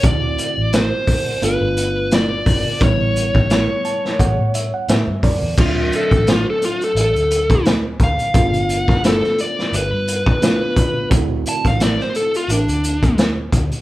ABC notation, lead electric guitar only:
X:1
M:4/4
L:1/16
Q:"Swing 16ths" 1/4=87
K:Dmix
V:1 name="Lead electric guitar"
d4 c4 B4 d4 | ^c12 z4 | =F2 A2 F A F A A4 z2 =f2- | =f4 A2 d2 B8 |
z2 a =f d c A =F D4 z4 |]